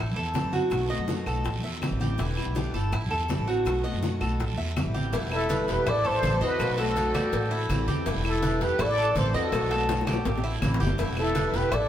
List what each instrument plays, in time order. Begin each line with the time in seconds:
Already playing: upright bass A1, cuban tres E4
0.16 upright bass E2, cuban tres A4, high conga
0.34 steel-string acoustic guitar E3 G3 C4 E4, high bongo, low bongo, high conga, short guiro
0.44 upright bass F#2
0.52 steel-string acoustic guitar G3 C4 E4, cuban tres F#4, high conga, short guiro
0.70 upright bass B1, steel-string acoustic guitar B2 D#3 A3 B3 F#4, high bongo, high conga, long guiro, claves
0.89 steel-string acoustic guitar A3 B3 F#4, cuban tres D#5, high conga
0.99 upright bass F#2
1.08 steel-string acoustic guitar B2 D#3 A3 B3 F#4, high bongo, high conga, short guiro
1.26 upright bass B1, steel-string acoustic guitar A3 B3 F#4, cuban tres A4, high bongo, short guiro, claves
1.44 upright bass A1, muted steel-string acoustic guitar stroke, high bongo, high conga, long guiro
1.64 upright bass E2, cuban tres E5, high bongo, high conga
1.81 steel-string acoustic guitar E3 G3 C4 E4, high bongo, low bongo, high conga, short guiro, claves
1.91 upright bass A1
2.00 steel-string acoustic guitar G3 C4 E4, cuban tres G4, high bongo, high conga, short guiro
2.18 upright bass E1, steel-string acoustic guitar B2 D3 G3 B3 E4, cuban tres E4, high bongo, long guiro
2.37 steel-string acoustic guitar G3 B3 E4, high conga, claves
2.46 upright bass B1
2.55 steel-string acoustic guitar B2 D3 G3 B3 E4, cuban tres G4, high bongo, high conga, short guiro
2.74 upright bass G1, steel-string acoustic guitar G3 B3 E4, cuban tres A4, high conga, short guiro
2.92 upright bass A1, cuban tres E4, muted steel-string acoustic guitar stroke, high bongo, high conga, long guiro, claves
3.11 upright bass E2, cuban tres A4, high conga
3.28 steel-string acoustic guitar E3 G3 C4 E4, high bongo, low bongo, high conga, short guiro
3.38 upright bass A1
3.47 steel-string acoustic guitar G3 C4 E4, cuban tres F#4, short guiro
3.65 upright bass B1, steel-string acoustic guitar B2 D#3 A3 B3 F#4, high bongo, high conga, long guiro, claves
3.84 steel-string acoustic guitar A3 B3 F#4, cuban tres D#5, high conga
3.93 upright bass F#2
4.02 steel-string acoustic guitar B2 D#3 A3 B3 F#4, high bongo, high conga, short guiro
4.21 upright bass B1, steel-string acoustic guitar A3 B3 F#4, cuban tres A4, high bongo, short guiro, claves
4.40 upright bass A1, muted steel-string acoustic guitar stroke, high bongo, high conga, long guiro
4.58 upright bass E2, cuban tres E5, high bongo, high conga
4.76 steel-string acoustic guitar E3 G3 C4 E4, high bongo, low bongo, high conga, short guiro, claves
4.85 upright bass A1
4.94 steel-string acoustic guitar G3 C4 E4, cuban tres G4, high bongo, high conga, short guiro
5.12 upright bass E1, steel-string acoustic guitar B2 D3 G3 B3 E4, cuban tres E4, cowbell, high conga, long guiro
5.22 upright bass E1
5.31 steel-string acoustic guitar G3 B3 E4, violin section E4, muted trumpet A4, high conga, claves
5.49 steel-string acoustic guitar B2 D3 G3 B3 E4, cuban tres B4, cowbell, high conga, short guiro
5.68 upright bass E1, steel-string acoustic guitar G3 B3 E4, violin section G4, muted trumpet B4, cowbell, high conga, short guiro
5.86 upright bass A1, cuban tres E4, violin section A4, muted trumpet D5, muted steel-string acoustic guitar stroke, cowbell, high conga, low conga, long guiro, claves
6.04 cuban tres A4, violin section A4, muted trumpet C5, high conga, low conga
6.23 upright bass A1, steel-string acoustic guitar E3 G3 C4 E4, cowbell, high conga, short guiro
6.41 upright bass E2, steel-string acoustic guitar G3 C4 E4, violin section F#4, muted trumpet B4, cuban tres D#5, short guiro
6.59 upright bass B1, steel-string acoustic guitar B2 D#3 A3 B3 F#4, cowbell, high conga, long guiro, claves
6.68 upright bass B1
6.78 steel-string acoustic guitar A3 B3 F#4, violin section F#4, cuban tres A4, muted trumpet A4, cowbell, high conga
6.96 steel-string acoustic guitar B2 D#3 A3 B3 F#4, cowbell, high conga, short guiro
7.14 upright bass E2, cuban tres G3, steel-string acoustic guitar A3 B3 F#4, cowbell, high conga, short guiro, claves
7.33 upright bass A1, muted steel-string acoustic guitar stroke, cowbell, high conga, long guiro
7.51 cuban tres E4, high conga
7.69 upright bass A1, steel-string acoustic guitar E3 G3 C4 E4, cowbell, high conga, short guiro, claves
7.88 upright bass E2, steel-string acoustic guitar G3 C4 E4, cuban tres G4, high conga, short guiro
8.06 upright bass E1, steel-string acoustic guitar B2 D3 G3 B3 E4, cuban tres E4, cowbell, high conga, long guiro
8.15 upright bass E1
8.24 steel-string acoustic guitar G3 B3 E4, violin section E4, muted trumpet A4, high conga, claves
8.42 steel-string acoustic guitar B2 D3 G3 B3 E4, cuban tres B4, cowbell, high conga, short guiro
8.61 upright bass E2, steel-string acoustic guitar G3 B3 E4, violin section G4, muted trumpet B4, cowbell, high conga, short guiro
8.79 upright bass A1, cuban tres E4, violin section A4, muted trumpet D5, muted steel-string acoustic guitar stroke, cowbell, high conga, low conga, long guiro, claves
8.97 cuban tres A4, high conga
9.15 upright bass A1, steel-string acoustic guitar E3 G3 C4 E4, violin section A4, muted trumpet C5, cowbell, high conga, short guiro
9.34 upright bass E2, steel-string acoustic guitar G3 C4 E4, violin section F#4, muted trumpet A4, cuban tres D#5, short guiro
9.52 upright bass B1, steel-string acoustic guitar B2 D#3 A3 B3 F#4, cowbell, high conga, long guiro, claves
9.61 upright bass B1
9.70 steel-string acoustic guitar A3 B3 F#4, cuban tres A4, cowbell
9.89 steel-string acoustic guitar B2 D#3 A3 B3 F#4, cowbell, high bongo, high conga, short guiro
10.01 high bongo
10.07 upright bass B1, steel-string acoustic guitar A3 B3 F#4, cuban tres G4, cowbell, high conga, short guiro, claves
10.13 high bongo
10.25 upright bass A1, muted steel-string acoustic guitar stroke, cowbell, low bongo, high conga, long guiro
10.38 low bongo
10.44 cuban tres E4, high conga
10.62 upright bass A1, steel-string acoustic guitar E3 G3 C4 E4, cowbell, low bongo, high conga, short guiro, claves
10.74 low bongo
10.80 upright bass F#1, steel-string acoustic guitar G3 C4 E4, cuban tres G4, high conga, short guiro
10.87 low bongo
10.98 upright bass E1, steel-string acoustic guitar B2 D3 G3 B3 E4, cuban tres E4, cowbell, long guiro
11.08 upright bass E1
11.17 steel-string acoustic guitar G3 B3 E4, violin section E4, muted trumpet A4, high conga, claves
11.35 steel-string acoustic guitar B2 D3 G3 B3 E4, cuban tres B4, cowbell, high conga, short guiro
11.53 upright bass E1, steel-string acoustic guitar G3 B3 E4, violin section G4, muted trumpet B4, cowbell, high conga, short guiro
11.72 upright bass A1, cuban tres E4, violin section A4, muted trumpet D5, muted steel-string acoustic guitar stroke, cowbell, high conga, low conga, long guiro, claves